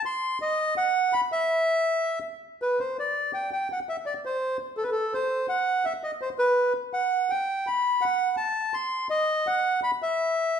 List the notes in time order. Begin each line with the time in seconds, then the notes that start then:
0.05 C6
0.42 D#5
0.77 F#5
1.13 B5
1.32 E5
2.62 B4
2.80 C5
2.99 D5
3.34 G5
3.52 G5
3.72 F#5
3.89 E5
4.06 D5
4.25 C5
4.77 A4
4.83 B4
4.91 A4
5.14 C5
5.49 F#5
5.85 E5
6.04 D#5
6.21 C5
6.38 B4
6.93 F#5
7.30 G5
7.67 B5
8.01 F#5
8.37 A5
8.74 C6
9.10 D#5
9.47 F#5
9.83 B5
10.02 E5